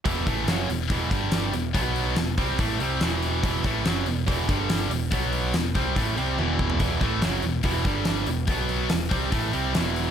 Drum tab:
HH |o-o-o-o-o-o-o-o-|o-o-o-o-o-o-o-o-|o-o-o-o-o-o-o-o-|o-o-o-o-o-o-----|
SD |----o-------o---|----o-------o---|----o-------o---|----o-----------|
T1 |----------------|----------------|----------------|------------o---|
FT |----------------|----------------|----------------|---------------o|
BD |o-o-----o-o-----|o-----o-o-------|o-o-----o-o-----|o-----o-o-----o-|

HH |o-o-o-o-o-o-o-o-|o-o-o-o-o-o-o-o-|
SD |----o-------o---|----o-------o---|
T1 |----------------|----------------|
FT |----------------|----------------|
BD |o-o-----o-o-----|o-----o-o-------|